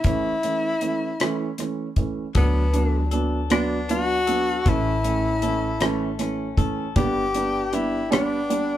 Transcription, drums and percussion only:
0.04 kick, closed hi-hat
0.43 closed hi-hat
0.81 closed hi-hat
1.20 cross-stick, closed hi-hat
1.58 cross-stick, closed hi-hat
1.96 kick, closed hi-hat
2.35 kick, closed hi-hat
2.74 closed hi-hat
3.11 closed hi-hat
3.50 cross-stick, closed hi-hat
3.89 closed hi-hat
4.27 closed hi-hat
4.66 kick, closed hi-hat
5.04 closed hi-hat
5.42 closed hi-hat
5.81 cross-stick, closed hi-hat
6.19 cross-stick, closed hi-hat
6.57 kick, closed hi-hat
6.96 kick, closed hi-hat
7.34 closed hi-hat
7.73 closed hi-hat
8.12 cross-stick, closed hi-hat
8.50 closed hi-hat

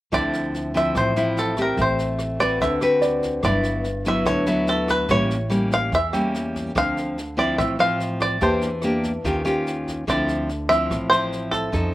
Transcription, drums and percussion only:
0.12 kick, cross-stick, snare
0.33 snare
0.54 snare
0.75 kick, snare
0.95 kick, cross-stick, snare
1.16 snare
1.37 snare
1.57 kick, cross-stick, snare
1.77 kick, snare
1.99 snare
2.19 cross-stick, snare
2.39 kick, snare
2.60 kick, snare
2.81 cross-stick, snare
3.01 snare
3.22 kick, snare
3.43 kick, cross-stick, snare
3.63 snare
3.84 snare
4.05 kick, snare
4.25 kick, cross-stick, snare
4.46 snare
4.67 snare
4.88 kick, cross-stick, snare
5.08 kick, snare
5.30 snare
5.50 cross-stick, snare
5.71 kick, snare
5.92 kick, snare
6.13 cross-stick, snare
6.34 snare
6.55 kick, snare
6.76 kick, cross-stick, snare
6.97 snare
7.18 snare
7.38 kick, snare
7.59 kick, cross-stick, snare
7.79 snare
8.00 snare
8.20 kick, cross-stick, snare
8.41 kick, snare
8.61 snare
8.82 cross-stick, snare
9.03 kick, snare
9.24 kick, snare
9.45 cross-stick, snare
9.66 snare
9.87 kick, snare
10.07 kick, cross-stick, snare
10.28 snare
10.49 snare
10.70 kick, snare
10.90 kick, cross-stick, snare
11.11 snare
11.32 snare
11.52 kick, cross-stick, snare
11.73 kick, snare

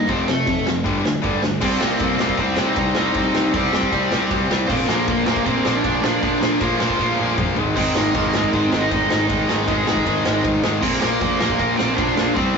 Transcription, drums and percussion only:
0.09 kick, crash
0.28 snare
0.47 kick, crash
0.67 snare
0.86 kick, crash
1.05 snare
1.23 kick, crash
1.43 snare
1.61 kick, crash
1.81 snare
2.00 kick, ride
2.19 snare
2.29 kick
2.37 kick, ride
2.57 snare
2.76 kick, ride
2.95 snare
3.14 kick, ride
3.35 snare
3.54 kick, ride
3.73 snare
3.83 kick
3.93 kick, ride
4.12 snare
4.31 kick, ride
4.51 snare
4.70 kick, crash
4.89 snare
5.08 kick, ride
5.26 snare
5.36 kick
5.46 kick, ride
5.65 snare
5.84 kick, ride
6.04 snare
6.23 kick, ride
6.43 snare
6.61 kick, ride
6.80 snare
6.90 kick
6.99 kick, snare
7.38 kick, mid tom
7.56 floor tom
7.77 kick, crash
7.95 snare
8.14 kick, ride
8.34 snare
8.44 kick
8.53 kick, ride
8.73 snare
8.91 kick, ride
9.11 snare
9.29 kick, ride
9.49 snare
9.68 kick, ride
9.87 snare
9.97 kick
10.06 kick, ride
10.26 snare
10.44 kick, ride
10.64 snare
10.83 kick, crash
11.02 snare
11.21 kick, ride
11.41 snare
11.50 kick
11.59 kick, ride
11.79 snare
11.98 kick, ride
12.17 snare
12.36 kick, snare

